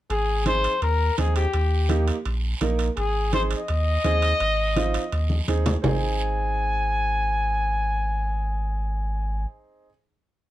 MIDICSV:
0, 0, Header, 1, 5, 480
1, 0, Start_track
1, 0, Key_signature, -4, "major"
1, 0, Tempo, 357782
1, 138, Time_signature, 4, 2, 24, 8
1, 14088, End_track
2, 0, Start_track
2, 0, Title_t, "Trumpet"
2, 0, Program_c, 0, 56
2, 142, Note_on_c, 0, 68, 88
2, 587, Note_off_c, 0, 68, 0
2, 627, Note_on_c, 0, 72, 105
2, 1071, Note_off_c, 0, 72, 0
2, 1101, Note_on_c, 0, 70, 94
2, 1548, Note_off_c, 0, 70, 0
2, 1584, Note_on_c, 0, 68, 82
2, 1806, Note_off_c, 0, 68, 0
2, 1829, Note_on_c, 0, 67, 84
2, 2734, Note_off_c, 0, 67, 0
2, 3998, Note_on_c, 0, 68, 90
2, 4441, Note_off_c, 0, 68, 0
2, 4478, Note_on_c, 0, 72, 95
2, 4585, Note_off_c, 0, 72, 0
2, 4718, Note_on_c, 0, 75, 114
2, 7305, Note_off_c, 0, 75, 0
2, 7833, Note_on_c, 0, 80, 87
2, 12686, Note_off_c, 0, 80, 0
2, 14088, End_track
3, 0, Start_track
3, 0, Title_t, "Upright piano"
3, 0, Program_c, 1, 0
3, 614, Note_on_c, 1, 60, 71
3, 621, Note_on_c, 1, 63, 66
3, 627, Note_on_c, 1, 68, 77
3, 953, Note_off_c, 1, 60, 0
3, 957, Note_off_c, 1, 63, 0
3, 959, Note_off_c, 1, 68, 0
3, 1576, Note_on_c, 1, 60, 68
3, 1581, Note_on_c, 1, 63, 62
3, 1586, Note_on_c, 1, 68, 68
3, 1915, Note_off_c, 1, 60, 0
3, 1918, Note_off_c, 1, 63, 0
3, 1920, Note_off_c, 1, 68, 0
3, 2534, Note_on_c, 1, 58, 86
3, 2541, Note_on_c, 1, 63, 76
3, 2547, Note_on_c, 1, 67, 94
3, 2876, Note_off_c, 1, 58, 0
3, 2879, Note_off_c, 1, 63, 0
3, 2882, Note_off_c, 1, 67, 0
3, 3501, Note_on_c, 1, 58, 81
3, 3506, Note_on_c, 1, 63, 71
3, 3512, Note_on_c, 1, 70, 88
3, 3841, Note_off_c, 1, 58, 0
3, 3843, Note_off_c, 1, 63, 0
3, 3846, Note_off_c, 1, 70, 0
3, 4461, Note_on_c, 1, 60, 76
3, 4464, Note_on_c, 1, 63, 62
3, 4470, Note_on_c, 1, 68, 80
3, 4802, Note_off_c, 1, 60, 0
3, 4804, Note_off_c, 1, 63, 0
3, 4807, Note_off_c, 1, 68, 0
3, 5422, Note_on_c, 1, 60, 78
3, 5428, Note_on_c, 1, 63, 70
3, 5431, Note_on_c, 1, 68, 84
3, 5764, Note_off_c, 1, 60, 0
3, 5766, Note_off_c, 1, 63, 0
3, 5768, Note_off_c, 1, 68, 0
3, 6385, Note_on_c, 1, 60, 86
3, 6389, Note_on_c, 1, 63, 76
3, 6395, Note_on_c, 1, 65, 94
3, 6726, Note_off_c, 1, 60, 0
3, 6728, Note_off_c, 1, 63, 0
3, 6731, Note_off_c, 1, 65, 0
3, 7349, Note_on_c, 1, 60, 77
3, 7356, Note_on_c, 1, 63, 74
3, 7359, Note_on_c, 1, 68, 81
3, 7688, Note_off_c, 1, 60, 0
3, 7691, Note_off_c, 1, 63, 0
3, 7693, Note_off_c, 1, 68, 0
3, 7807, Note_on_c, 1, 60, 73
3, 7835, Note_on_c, 1, 63, 62
3, 7863, Note_on_c, 1, 68, 78
3, 13220, Note_off_c, 1, 60, 0
3, 13249, Note_off_c, 1, 63, 0
3, 13277, Note_off_c, 1, 68, 0
3, 14088, End_track
4, 0, Start_track
4, 0, Title_t, "Sub bass"
4, 0, Program_c, 2, 38
4, 133, Note_on_c, 2, 32, 101
4, 905, Note_off_c, 2, 32, 0
4, 1099, Note_on_c, 2, 39, 92
4, 1484, Note_off_c, 2, 39, 0
4, 1584, Note_on_c, 2, 39, 97
4, 1968, Note_off_c, 2, 39, 0
4, 2064, Note_on_c, 2, 39, 105
4, 2833, Note_off_c, 2, 39, 0
4, 3027, Note_on_c, 2, 34, 88
4, 3411, Note_off_c, 2, 34, 0
4, 3503, Note_on_c, 2, 34, 99
4, 3890, Note_off_c, 2, 34, 0
4, 3987, Note_on_c, 2, 32, 105
4, 4758, Note_off_c, 2, 32, 0
4, 4954, Note_on_c, 2, 39, 89
4, 5338, Note_off_c, 2, 39, 0
4, 5433, Note_on_c, 2, 39, 96
4, 5817, Note_off_c, 2, 39, 0
4, 5910, Note_on_c, 2, 32, 108
4, 6680, Note_off_c, 2, 32, 0
4, 6875, Note_on_c, 2, 39, 83
4, 7259, Note_off_c, 2, 39, 0
4, 7353, Note_on_c, 2, 39, 90
4, 7738, Note_off_c, 2, 39, 0
4, 7837, Note_on_c, 2, 32, 89
4, 12688, Note_off_c, 2, 32, 0
4, 14088, End_track
5, 0, Start_track
5, 0, Title_t, "Drums"
5, 135, Note_on_c, 9, 63, 31
5, 135, Note_on_c, 9, 74, 65
5, 138, Note_on_c, 9, 65, 61
5, 269, Note_off_c, 9, 74, 0
5, 270, Note_off_c, 9, 63, 0
5, 272, Note_off_c, 9, 65, 0
5, 614, Note_on_c, 9, 63, 81
5, 616, Note_on_c, 9, 65, 65
5, 619, Note_on_c, 9, 73, 62
5, 748, Note_off_c, 9, 63, 0
5, 750, Note_off_c, 9, 65, 0
5, 753, Note_off_c, 9, 73, 0
5, 858, Note_on_c, 9, 73, 63
5, 862, Note_on_c, 9, 65, 65
5, 992, Note_off_c, 9, 73, 0
5, 996, Note_off_c, 9, 65, 0
5, 1100, Note_on_c, 9, 65, 60
5, 1101, Note_on_c, 9, 74, 71
5, 1105, Note_on_c, 9, 63, 32
5, 1234, Note_off_c, 9, 65, 0
5, 1235, Note_off_c, 9, 74, 0
5, 1239, Note_off_c, 9, 63, 0
5, 1580, Note_on_c, 9, 73, 64
5, 1584, Note_on_c, 9, 63, 79
5, 1584, Note_on_c, 9, 65, 66
5, 1714, Note_off_c, 9, 73, 0
5, 1718, Note_off_c, 9, 63, 0
5, 1718, Note_off_c, 9, 65, 0
5, 1820, Note_on_c, 9, 65, 67
5, 1821, Note_on_c, 9, 73, 62
5, 1955, Note_off_c, 9, 65, 0
5, 1956, Note_off_c, 9, 73, 0
5, 2059, Note_on_c, 9, 65, 63
5, 2064, Note_on_c, 9, 74, 70
5, 2066, Note_on_c, 9, 63, 34
5, 2193, Note_off_c, 9, 65, 0
5, 2198, Note_off_c, 9, 74, 0
5, 2200, Note_off_c, 9, 63, 0
5, 2540, Note_on_c, 9, 63, 79
5, 2542, Note_on_c, 9, 65, 68
5, 2545, Note_on_c, 9, 73, 67
5, 2674, Note_off_c, 9, 63, 0
5, 2676, Note_off_c, 9, 65, 0
5, 2679, Note_off_c, 9, 73, 0
5, 2785, Note_on_c, 9, 65, 66
5, 2785, Note_on_c, 9, 73, 59
5, 2919, Note_off_c, 9, 65, 0
5, 2919, Note_off_c, 9, 73, 0
5, 3024, Note_on_c, 9, 74, 66
5, 3025, Note_on_c, 9, 63, 34
5, 3026, Note_on_c, 9, 65, 63
5, 3158, Note_off_c, 9, 74, 0
5, 3159, Note_off_c, 9, 63, 0
5, 3160, Note_off_c, 9, 65, 0
5, 3501, Note_on_c, 9, 65, 68
5, 3503, Note_on_c, 9, 73, 63
5, 3509, Note_on_c, 9, 63, 76
5, 3635, Note_off_c, 9, 65, 0
5, 3637, Note_off_c, 9, 73, 0
5, 3643, Note_off_c, 9, 63, 0
5, 3740, Note_on_c, 9, 73, 69
5, 3743, Note_on_c, 9, 65, 68
5, 3875, Note_off_c, 9, 73, 0
5, 3877, Note_off_c, 9, 65, 0
5, 3981, Note_on_c, 9, 74, 68
5, 3985, Note_on_c, 9, 65, 63
5, 3987, Note_on_c, 9, 63, 30
5, 4115, Note_off_c, 9, 74, 0
5, 4119, Note_off_c, 9, 65, 0
5, 4121, Note_off_c, 9, 63, 0
5, 4464, Note_on_c, 9, 73, 67
5, 4466, Note_on_c, 9, 65, 67
5, 4467, Note_on_c, 9, 63, 81
5, 4598, Note_off_c, 9, 73, 0
5, 4600, Note_off_c, 9, 65, 0
5, 4601, Note_off_c, 9, 63, 0
5, 4704, Note_on_c, 9, 65, 66
5, 4706, Note_on_c, 9, 73, 65
5, 4838, Note_off_c, 9, 65, 0
5, 4841, Note_off_c, 9, 73, 0
5, 4942, Note_on_c, 9, 65, 64
5, 4946, Note_on_c, 9, 74, 67
5, 4947, Note_on_c, 9, 63, 31
5, 5076, Note_off_c, 9, 65, 0
5, 5081, Note_off_c, 9, 74, 0
5, 5082, Note_off_c, 9, 63, 0
5, 5426, Note_on_c, 9, 65, 63
5, 5427, Note_on_c, 9, 63, 79
5, 5430, Note_on_c, 9, 73, 64
5, 5560, Note_off_c, 9, 65, 0
5, 5562, Note_off_c, 9, 63, 0
5, 5564, Note_off_c, 9, 73, 0
5, 5666, Note_on_c, 9, 65, 69
5, 5672, Note_on_c, 9, 73, 64
5, 5800, Note_off_c, 9, 65, 0
5, 5806, Note_off_c, 9, 73, 0
5, 5905, Note_on_c, 9, 63, 32
5, 5907, Note_on_c, 9, 65, 60
5, 5909, Note_on_c, 9, 74, 67
5, 6039, Note_off_c, 9, 63, 0
5, 6042, Note_off_c, 9, 65, 0
5, 6043, Note_off_c, 9, 74, 0
5, 6390, Note_on_c, 9, 63, 80
5, 6393, Note_on_c, 9, 65, 64
5, 6395, Note_on_c, 9, 73, 66
5, 6524, Note_off_c, 9, 63, 0
5, 6527, Note_off_c, 9, 65, 0
5, 6529, Note_off_c, 9, 73, 0
5, 6631, Note_on_c, 9, 73, 68
5, 6632, Note_on_c, 9, 65, 65
5, 6765, Note_off_c, 9, 73, 0
5, 6767, Note_off_c, 9, 65, 0
5, 6873, Note_on_c, 9, 63, 33
5, 6875, Note_on_c, 9, 65, 59
5, 6875, Note_on_c, 9, 74, 67
5, 7007, Note_off_c, 9, 63, 0
5, 7009, Note_off_c, 9, 65, 0
5, 7009, Note_off_c, 9, 74, 0
5, 7109, Note_on_c, 9, 63, 74
5, 7243, Note_off_c, 9, 63, 0
5, 7351, Note_on_c, 9, 63, 65
5, 7355, Note_on_c, 9, 65, 62
5, 7361, Note_on_c, 9, 73, 67
5, 7485, Note_off_c, 9, 63, 0
5, 7489, Note_off_c, 9, 65, 0
5, 7495, Note_off_c, 9, 73, 0
5, 7591, Note_on_c, 9, 65, 68
5, 7595, Note_on_c, 9, 64, 71
5, 7599, Note_on_c, 9, 73, 64
5, 7725, Note_off_c, 9, 65, 0
5, 7729, Note_off_c, 9, 64, 0
5, 7733, Note_off_c, 9, 73, 0
5, 7831, Note_on_c, 9, 64, 92
5, 7834, Note_on_c, 9, 66, 90
5, 7841, Note_on_c, 9, 74, 94
5, 7966, Note_off_c, 9, 64, 0
5, 7969, Note_off_c, 9, 66, 0
5, 7975, Note_off_c, 9, 74, 0
5, 14088, End_track
0, 0, End_of_file